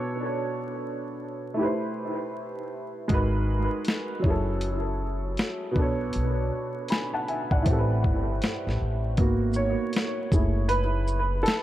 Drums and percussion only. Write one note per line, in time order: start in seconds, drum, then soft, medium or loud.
3.09 kick loud
3.09 closed hi-hat medium
3.85 snare loud
3.85 closed hi-hat medium
4.24 kick medium
4.61 closed hi-hat medium
5.37 snare loud
5.37 closed hi-hat medium
5.76 kick loud
6.13 closed hi-hat medium
6.88 snare loud
6.88 closed hi-hat medium
7.28 closed hi-hat soft
7.51 kick medium
7.66 kick medium
7.66 closed hi-hat medium
8.04 kick medium
8.42 snare loud
8.42 closed hi-hat medium
8.69 snare soft
9.17 kick loud
9.17 closed hi-hat medium
9.53 shaker soft
9.93 snare medium
9.93 closed hi-hat medium
10.32 kick loud
10.32 shaker soft
10.69 closed hi-hat medium
11.07 shaker soft
11.46 snare loud
11.46 closed hi-hat medium